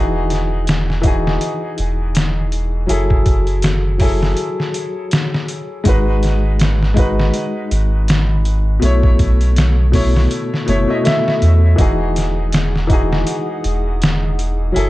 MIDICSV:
0, 0, Header, 1, 5, 480
1, 0, Start_track
1, 0, Tempo, 740741
1, 1876, Time_signature, 4, 2, 24, 8
1, 9653, End_track
2, 0, Start_track
2, 0, Title_t, "Analog synth pad"
2, 0, Program_c, 0, 89
2, 7640, Note_on_c, 0, 87, 93
2, 7641, Note_on_c, 0, 68, 82
2, 7641, Note_on_c, 0, 78, 72
2, 9539, Note_off_c, 0, 68, 0
2, 9539, Note_off_c, 0, 78, 0
2, 9539, Note_off_c, 0, 87, 0
2, 9556, Note_on_c, 0, 57, 83
2, 9558, Note_on_c, 0, 80, 77
2, 9559, Note_on_c, 0, 78, 81
2, 9653, Note_off_c, 0, 57, 0
2, 9653, Note_off_c, 0, 78, 0
2, 9653, Note_off_c, 0, 80, 0
2, 9653, End_track
3, 0, Start_track
3, 0, Title_t, "Upright piano"
3, 0, Program_c, 1, 0
3, 0, Note_on_c, 1, 52, 88
3, 0, Note_on_c, 1, 63, 81
3, 0, Note_on_c, 1, 66, 85
3, 0, Note_on_c, 1, 68, 97
3, 60, Control_c, 1, 64, 127
3, 642, Note_off_c, 1, 52, 0
3, 647, Note_off_c, 1, 63, 0
3, 653, Note_off_c, 1, 66, 0
3, 658, Note_on_c, 1, 52, 85
3, 660, Note_off_c, 1, 68, 0
3, 669, Note_on_c, 1, 63, 73
3, 682, Note_on_c, 1, 66, 75
3, 693, Note_on_c, 1, 68, 92
3, 1843, Note_off_c, 1, 52, 0
3, 1848, Note_off_c, 1, 63, 0
3, 1854, Note_off_c, 1, 66, 0
3, 1857, Note_on_c, 1, 54, 85
3, 1860, Note_off_c, 1, 68, 0
3, 1868, Note_on_c, 1, 64, 83
3, 1878, Note_on_c, 1, 68, 82
3, 1885, Control_c, 1, 64, 0
3, 1890, Note_on_c, 1, 69, 96
3, 1989, Control_c, 1, 64, 127
3, 2562, Note_off_c, 1, 54, 0
3, 2567, Note_off_c, 1, 64, 0
3, 2572, Note_off_c, 1, 68, 0
3, 2578, Note_off_c, 1, 69, 0
3, 2580, Note_on_c, 1, 54, 80
3, 2590, Note_on_c, 1, 64, 76
3, 2602, Note_on_c, 1, 68, 72
3, 2614, Note_on_c, 1, 69, 91
3, 3764, Note_off_c, 1, 54, 0
3, 3768, Note_off_c, 1, 64, 0
3, 3774, Note_off_c, 1, 68, 0
3, 3781, Note_off_c, 1, 69, 0
3, 3783, Note_on_c, 1, 56, 95
3, 3794, Note_on_c, 1, 63, 79
3, 3805, Control_c, 1, 64, 0
3, 3805, Note_on_c, 1, 66, 84
3, 3816, Note_on_c, 1, 71, 105
3, 3901, Control_c, 1, 64, 127
3, 4485, Note_off_c, 1, 56, 0
3, 4490, Note_off_c, 1, 63, 0
3, 4496, Note_off_c, 1, 66, 0
3, 4497, Note_on_c, 1, 56, 85
3, 4501, Note_off_c, 1, 71, 0
3, 4508, Note_on_c, 1, 63, 77
3, 4519, Note_on_c, 1, 66, 76
3, 4532, Note_on_c, 1, 71, 98
3, 5682, Note_off_c, 1, 56, 0
3, 5687, Note_off_c, 1, 63, 0
3, 5693, Note_off_c, 1, 66, 0
3, 5699, Note_off_c, 1, 71, 0
3, 5699, Note_on_c, 1, 47, 87
3, 5713, Note_on_c, 1, 57, 80
3, 5722, Note_on_c, 1, 64, 83
3, 5725, Control_c, 1, 64, 0
3, 5734, Note_on_c, 1, 73, 106
3, 5835, Control_c, 1, 64, 127
3, 6403, Note_off_c, 1, 47, 0
3, 6410, Note_off_c, 1, 57, 0
3, 6414, Note_off_c, 1, 64, 0
3, 6420, Note_off_c, 1, 73, 0
3, 6427, Note_on_c, 1, 47, 88
3, 6434, Note_on_c, 1, 57, 77
3, 6438, Note_on_c, 1, 64, 78
3, 6446, Note_on_c, 1, 73, 97
3, 6891, Note_off_c, 1, 47, 0
3, 6895, Note_off_c, 1, 57, 0
3, 6896, Note_off_c, 1, 64, 0
3, 6900, Note_off_c, 1, 73, 0
3, 6910, Note_on_c, 1, 47, 92
3, 6919, Note_on_c, 1, 57, 84
3, 6921, Note_on_c, 1, 64, 84
3, 6929, Note_on_c, 1, 73, 101
3, 7017, Note_off_c, 1, 47, 0
3, 7022, Note_off_c, 1, 57, 0
3, 7023, Note_off_c, 1, 64, 0
3, 7026, Note_off_c, 1, 73, 0
3, 7048, Note_on_c, 1, 47, 86
3, 7054, Note_on_c, 1, 57, 75
3, 7061, Note_on_c, 1, 64, 76
3, 7065, Note_on_c, 1, 75, 86
3, 7129, Note_off_c, 1, 47, 0
3, 7132, Note_off_c, 1, 57, 0
3, 7135, Note_off_c, 1, 64, 0
3, 7137, Note_off_c, 1, 75, 0
3, 7151, Note_on_c, 1, 47, 88
3, 7157, Note_on_c, 1, 57, 83
3, 7162, Note_on_c, 1, 64, 85
3, 7167, Note_on_c, 1, 76, 94
3, 7609, Note_off_c, 1, 47, 0
3, 7612, Note_off_c, 1, 57, 0
3, 7614, Note_off_c, 1, 64, 0
3, 7617, Note_off_c, 1, 76, 0
3, 7620, Note_on_c, 1, 52, 91
3, 7632, Note_on_c, 1, 63, 86
3, 7642, Note_on_c, 1, 66, 83
3, 7645, Control_c, 1, 64, 0
3, 7653, Note_on_c, 1, 68, 97
3, 7739, Control_c, 1, 64, 127
3, 8323, Note_off_c, 1, 52, 0
3, 8329, Note_off_c, 1, 63, 0
3, 8334, Note_off_c, 1, 66, 0
3, 8340, Note_off_c, 1, 68, 0
3, 8342, Note_on_c, 1, 52, 83
3, 8352, Note_on_c, 1, 63, 79
3, 8366, Note_on_c, 1, 66, 78
3, 8378, Note_on_c, 1, 68, 92
3, 9524, Note_off_c, 1, 52, 0
3, 9530, Note_off_c, 1, 63, 0
3, 9536, Note_off_c, 1, 66, 0
3, 9540, Note_on_c, 1, 54, 89
3, 9542, Note_off_c, 1, 68, 0
3, 9554, Note_on_c, 1, 64, 87
3, 9564, Note_on_c, 1, 68, 78
3, 9565, Control_c, 1, 64, 0
3, 9576, Note_on_c, 1, 69, 101
3, 9653, Note_off_c, 1, 54, 0
3, 9653, Note_off_c, 1, 64, 0
3, 9653, Note_off_c, 1, 68, 0
3, 9653, Note_off_c, 1, 69, 0
3, 9653, End_track
4, 0, Start_track
4, 0, Title_t, "Sub bass"
4, 0, Program_c, 2, 38
4, 0, Note_on_c, 2, 28, 91
4, 896, Note_off_c, 2, 28, 0
4, 1158, Note_on_c, 2, 28, 86
4, 1857, Note_off_c, 2, 28, 0
4, 1877, Note_on_c, 2, 30, 96
4, 2817, Note_off_c, 2, 30, 0
4, 3796, Note_on_c, 2, 32, 93
4, 4736, Note_off_c, 2, 32, 0
4, 4998, Note_on_c, 2, 32, 86
4, 5697, Note_off_c, 2, 32, 0
4, 5718, Note_on_c, 2, 35, 95
4, 6657, Note_off_c, 2, 35, 0
4, 6920, Note_on_c, 2, 30, 85
4, 7039, Note_off_c, 2, 30, 0
4, 7401, Note_on_c, 2, 40, 89
4, 7614, Note_off_c, 2, 40, 0
4, 7638, Note_on_c, 2, 28, 94
4, 8578, Note_off_c, 2, 28, 0
4, 8842, Note_on_c, 2, 28, 86
4, 9539, Note_off_c, 2, 28, 0
4, 9563, Note_on_c, 2, 30, 95
4, 9653, Note_off_c, 2, 30, 0
4, 9653, End_track
5, 0, Start_track
5, 0, Title_t, "Drums"
5, 196, Note_on_c, 9, 42, 63
5, 208, Note_on_c, 9, 38, 31
5, 261, Note_off_c, 9, 42, 0
5, 272, Note_off_c, 9, 38, 0
5, 436, Note_on_c, 9, 42, 74
5, 447, Note_on_c, 9, 38, 101
5, 500, Note_off_c, 9, 42, 0
5, 512, Note_off_c, 9, 38, 0
5, 583, Note_on_c, 9, 38, 38
5, 648, Note_off_c, 9, 38, 0
5, 670, Note_on_c, 9, 42, 61
5, 674, Note_on_c, 9, 36, 88
5, 735, Note_off_c, 9, 42, 0
5, 738, Note_off_c, 9, 36, 0
5, 825, Note_on_c, 9, 38, 51
5, 890, Note_off_c, 9, 38, 0
5, 913, Note_on_c, 9, 42, 76
5, 978, Note_off_c, 9, 42, 0
5, 1152, Note_on_c, 9, 42, 65
5, 1217, Note_off_c, 9, 42, 0
5, 1392, Note_on_c, 9, 42, 79
5, 1404, Note_on_c, 9, 38, 103
5, 1457, Note_off_c, 9, 42, 0
5, 1469, Note_off_c, 9, 38, 0
5, 1633, Note_on_c, 9, 42, 61
5, 1698, Note_off_c, 9, 42, 0
5, 1874, Note_on_c, 9, 42, 82
5, 1939, Note_off_c, 9, 42, 0
5, 2011, Note_on_c, 9, 36, 86
5, 2075, Note_off_c, 9, 36, 0
5, 2111, Note_on_c, 9, 42, 61
5, 2113, Note_on_c, 9, 36, 87
5, 2175, Note_off_c, 9, 42, 0
5, 2178, Note_off_c, 9, 36, 0
5, 2248, Note_on_c, 9, 42, 44
5, 2313, Note_off_c, 9, 42, 0
5, 2348, Note_on_c, 9, 42, 73
5, 2360, Note_on_c, 9, 38, 110
5, 2413, Note_off_c, 9, 42, 0
5, 2424, Note_off_c, 9, 38, 0
5, 2589, Note_on_c, 9, 46, 76
5, 2593, Note_on_c, 9, 36, 88
5, 2654, Note_off_c, 9, 46, 0
5, 2657, Note_off_c, 9, 36, 0
5, 2739, Note_on_c, 9, 38, 49
5, 2803, Note_off_c, 9, 38, 0
5, 2829, Note_on_c, 9, 42, 75
5, 2894, Note_off_c, 9, 42, 0
5, 2979, Note_on_c, 9, 38, 39
5, 3044, Note_off_c, 9, 38, 0
5, 3073, Note_on_c, 9, 42, 67
5, 3138, Note_off_c, 9, 42, 0
5, 3313, Note_on_c, 9, 42, 81
5, 3325, Note_on_c, 9, 38, 109
5, 3378, Note_off_c, 9, 42, 0
5, 3390, Note_off_c, 9, 38, 0
5, 3463, Note_on_c, 9, 38, 53
5, 3528, Note_off_c, 9, 38, 0
5, 3554, Note_on_c, 9, 42, 61
5, 3619, Note_off_c, 9, 42, 0
5, 3791, Note_on_c, 9, 42, 85
5, 3794, Note_on_c, 9, 36, 104
5, 3856, Note_off_c, 9, 42, 0
5, 3859, Note_off_c, 9, 36, 0
5, 4035, Note_on_c, 9, 42, 63
5, 4047, Note_on_c, 9, 38, 34
5, 4100, Note_off_c, 9, 42, 0
5, 4112, Note_off_c, 9, 38, 0
5, 4273, Note_on_c, 9, 42, 73
5, 4285, Note_on_c, 9, 38, 106
5, 4338, Note_off_c, 9, 42, 0
5, 4350, Note_off_c, 9, 38, 0
5, 4423, Note_on_c, 9, 38, 41
5, 4488, Note_off_c, 9, 38, 0
5, 4515, Note_on_c, 9, 36, 92
5, 4515, Note_on_c, 9, 42, 68
5, 4579, Note_off_c, 9, 42, 0
5, 4580, Note_off_c, 9, 36, 0
5, 4663, Note_on_c, 9, 38, 56
5, 4727, Note_off_c, 9, 38, 0
5, 4754, Note_on_c, 9, 42, 77
5, 4818, Note_off_c, 9, 42, 0
5, 4998, Note_on_c, 9, 42, 66
5, 5063, Note_off_c, 9, 42, 0
5, 5237, Note_on_c, 9, 42, 80
5, 5249, Note_on_c, 9, 38, 114
5, 5302, Note_off_c, 9, 42, 0
5, 5314, Note_off_c, 9, 38, 0
5, 5477, Note_on_c, 9, 42, 61
5, 5542, Note_off_c, 9, 42, 0
5, 5717, Note_on_c, 9, 42, 82
5, 5782, Note_off_c, 9, 42, 0
5, 5854, Note_on_c, 9, 36, 87
5, 5919, Note_off_c, 9, 36, 0
5, 5956, Note_on_c, 9, 42, 65
5, 5957, Note_on_c, 9, 36, 86
5, 6021, Note_off_c, 9, 42, 0
5, 6022, Note_off_c, 9, 36, 0
5, 6096, Note_on_c, 9, 42, 43
5, 6161, Note_off_c, 9, 42, 0
5, 6197, Note_on_c, 9, 42, 79
5, 6209, Note_on_c, 9, 38, 107
5, 6262, Note_off_c, 9, 42, 0
5, 6274, Note_off_c, 9, 38, 0
5, 6438, Note_on_c, 9, 36, 90
5, 6438, Note_on_c, 9, 46, 80
5, 6502, Note_off_c, 9, 36, 0
5, 6503, Note_off_c, 9, 46, 0
5, 6586, Note_on_c, 9, 38, 50
5, 6651, Note_off_c, 9, 38, 0
5, 6680, Note_on_c, 9, 42, 82
5, 6744, Note_off_c, 9, 42, 0
5, 6828, Note_on_c, 9, 38, 42
5, 6893, Note_off_c, 9, 38, 0
5, 6919, Note_on_c, 9, 42, 65
5, 6984, Note_off_c, 9, 42, 0
5, 7161, Note_on_c, 9, 42, 80
5, 7173, Note_on_c, 9, 38, 104
5, 7226, Note_off_c, 9, 42, 0
5, 7237, Note_off_c, 9, 38, 0
5, 7309, Note_on_c, 9, 38, 52
5, 7374, Note_off_c, 9, 38, 0
5, 7400, Note_on_c, 9, 42, 63
5, 7464, Note_off_c, 9, 42, 0
5, 7636, Note_on_c, 9, 36, 108
5, 7636, Note_on_c, 9, 42, 82
5, 7701, Note_off_c, 9, 36, 0
5, 7701, Note_off_c, 9, 42, 0
5, 7881, Note_on_c, 9, 42, 69
5, 7892, Note_on_c, 9, 38, 35
5, 7946, Note_off_c, 9, 42, 0
5, 7957, Note_off_c, 9, 38, 0
5, 8116, Note_on_c, 9, 42, 79
5, 8128, Note_on_c, 9, 38, 105
5, 8181, Note_off_c, 9, 42, 0
5, 8193, Note_off_c, 9, 38, 0
5, 8266, Note_on_c, 9, 38, 40
5, 8331, Note_off_c, 9, 38, 0
5, 8358, Note_on_c, 9, 36, 97
5, 8358, Note_on_c, 9, 42, 67
5, 8422, Note_off_c, 9, 36, 0
5, 8422, Note_off_c, 9, 42, 0
5, 8506, Note_on_c, 9, 38, 55
5, 8571, Note_off_c, 9, 38, 0
5, 8597, Note_on_c, 9, 42, 79
5, 8662, Note_off_c, 9, 42, 0
5, 8840, Note_on_c, 9, 42, 64
5, 8905, Note_off_c, 9, 42, 0
5, 9083, Note_on_c, 9, 42, 80
5, 9095, Note_on_c, 9, 38, 114
5, 9148, Note_off_c, 9, 42, 0
5, 9159, Note_off_c, 9, 38, 0
5, 9324, Note_on_c, 9, 42, 59
5, 9389, Note_off_c, 9, 42, 0
5, 9564, Note_on_c, 9, 42, 83
5, 9629, Note_off_c, 9, 42, 0
5, 9653, End_track
0, 0, End_of_file